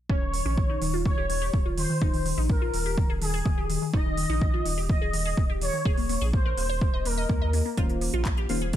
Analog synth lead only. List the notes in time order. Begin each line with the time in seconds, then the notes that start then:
0.09 C#5
1.05 C#5
1.78 C5
2.49 A#4
3.22 G#4
3.93 D#5
4.89 D#5
5.62 C#5
6.34 C5
7.05 A#4